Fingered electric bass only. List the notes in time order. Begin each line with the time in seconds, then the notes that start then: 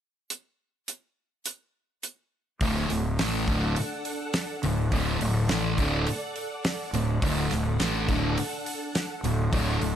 2.61 D1
2.90 D1
3.20 A1
3.48 D1
4.64 D1
4.92 D1
5.21 D1
5.50 A1
5.78 D1
6.93 D1
7.22 D1
7.51 D1
7.80 A1
8.09 D1
9.23 D1
9.53 D1
9.81 D1